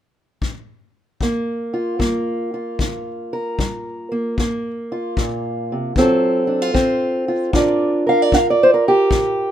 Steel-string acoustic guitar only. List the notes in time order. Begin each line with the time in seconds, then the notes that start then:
1.21 G2 A#3
1.74 F4
1.99 G3 A#3
2.54 F4
2.80 D3
3.33 A#4
3.59 G3
4.12 A#3
4.39 G2 A#3
4.92 F4
5.18 A#2
5.72 C3
5.97 D3 F#3 C4 F4 A4
6.47 D4
6.62 F4
6.74 F#3 C4
7.28 F4
7.53 G2 D4 F4 A#4 D5
8.07 A#4 F5
8.22 D5
8.33 D4 F5
8.50 D5
8.63 C5
8.74 A#4
8.88 G4
9.12 G2